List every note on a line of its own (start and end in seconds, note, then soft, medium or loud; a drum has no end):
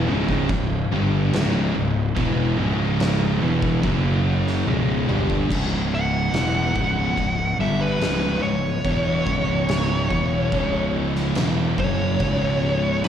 0.08 0.47 C#1 medium
0.08 0.48 C#2 medium
0.08 0.48 G#2 loud
0.08 0.48 C#3 loud
0.29 kick medium
0.49 0.88 C#1 medium
0.49 0.83 C#2 medium
0.49 0.83 G#2 medium
0.49 kick loud
0.49 crash medium
0.91 1.30 G1 loud
0.91 1.32 G2 medium
0.91 1.32 D3 medium
0.91 1.32 G3 medium
1.33 1.72 C#1 loud
1.33 1.73 C#2 loud
1.33 1.74 G#2 loud
1.33 1.74 C#3 loud
1.33 snare loud
1.33 crash medium
1.75 2.14 C#1 medium
1.75 2.08 C#2 medium
1.75 2.08 G#2 medium
2.16 2.55 E1 loud
2.16 2.57 E2 medium
2.16 2.57 B2 medium
2.16 2.57 E3 loud
2.16 kick loud
2.16 crash medium
2.59 3.38 C#1 loud
2.59 3.40 C#2 medium
2.59 3.41 G#2 loud
2.59 3.41 C#3 medium
3.00 snare loud
3.00 crash medium
3.41 3.80 E1 medium
3.41 3.82 E2 loud
3.41 3.82 B2 loud
3.41 3.83 E3 loud
3.62 kick medium
3.83 4.63 F#1 loud
3.83 4.65 F#2 medium
3.83 4.66 C#3 loud
3.83 4.66 F#3 loud
3.83 kick loud
3.83 crash medium
4.48 snare soft
4.66 5.06 C#1 loud
4.66 5.07 C#2 medium
4.66 5.08 G#2 loud
4.66 5.08 C#3 loud
4.66 high tom medium
5.08 5.48 G1 medium
5.08 5.49 G2 loud
5.08 5.49 D3 loud
5.08 5.50 G3 loud
5.08 mid tom medium
5.30 kick medium
5.49 6.30 C#1 loud
5.49 6.32 C#2 medium
5.49 6.33 G#2 medium
5.49 6.33 C#3 loud
5.49 kick medium
5.49 crash loud
5.49 crash medium
5.94 7.57 F#5 medium
6.33 6.73 E1 loud
6.33 6.74 E2 loud
6.33 6.75 B2 loud
6.33 6.75 E3 medium
6.33 snare loud
6.33 crash medium
6.75 7.15 C#1 medium
6.75 7.16 C#2 medium
6.75 7.17 G#2 loud
6.75 7.17 C#3 loud
6.75 kick loud
7.17 7.57 C#1 medium
7.17 7.52 C#2 medium
7.17 7.52 G#2 medium
7.17 kick medium
7.17 crash soft
7.59 7.98 G1 loud
7.59 8.00 G2 medium
7.59 8.01 D3 medium
7.59 8.01 G3 loud
7.59 7.80 E5 medium
7.81 8.42 B4 medium
8.01 8.41 C#1 loud
8.01 8.42 C#2 medium
8.01 8.42 G#2 loud
8.01 8.43 C#3 loud
8.01 snare loud
8.01 crash medium
8.43 8.83 C#1 medium
8.43 8.77 C#2 medium
8.43 8.77 G#2 medium
8.43 10.91 C#5 loud
8.85 9.24 E1 loud
8.85 9.26 E2 medium
8.85 9.27 B2 medium
8.85 9.27 E3 loud
8.85 kick loud
8.85 crash medium
9.27 10.07 C#1 loud
9.27 10.10 C#2 medium
9.27 10.10 G#2 loud
9.27 10.10 C#3 loud
9.27 kick loud
9.69 snare loud
9.69 crash medium
10.10 10.50 E1 loud
10.10 10.52 E2 loud
10.10 10.52 B2 loud
10.10 10.53 E3 loud
10.10 kick medium
10.52 11.33 C#1 loud
10.52 11.36 C#2 medium
10.52 11.36 G#2 loud
10.52 11.36 C#3 loud
10.52 kick loud
10.52 crash medium
11.16 snare soft
11.35 11.76 E1 medium
11.35 11.78 E2 medium
11.35 11.78 B2 loud
11.35 11.78 E3 loud
11.35 snare loud
11.35 crash medium
11.78 12.18 F#1 medium
11.78 12.20 F#2 medium
11.78 12.20 C#3 loud
11.78 12.20 F#3 loud
11.78 13.01 C#5 loud
11.78 kick loud
12.20 13.01 C#1 loud
12.20 13.04 C#2 medium
12.20 13.04 G#2 loud
12.20 13.04 C#3 loud
12.20 kick loud
12.20 crash medium
13.04 13.08 E1 loud
13.04 13.08 E2 medium
13.04 13.08 B2 medium
13.04 13.08 B4 medium
13.04 crash medium